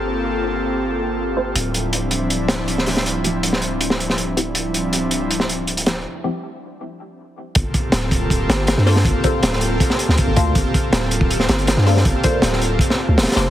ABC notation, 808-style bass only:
X:1
M:4/4
L:1/16
Q:1/4=160
K:Gm
V:1 name="808-style bass" clef=bass
G,,,16 | D,,,16- | D,,,16- | D,,,16 |
z16 | G,,, z3 D,,,6 G,,,3 G,,3 | G,,, z3 D,,,4 z3 D,, z G,,, D,,2 | G,,, z3 D,,,6 G,,,3 G,,3 |
G,,, z3 D,,,4 z3 D,, D,,, z F,,, G,,, |]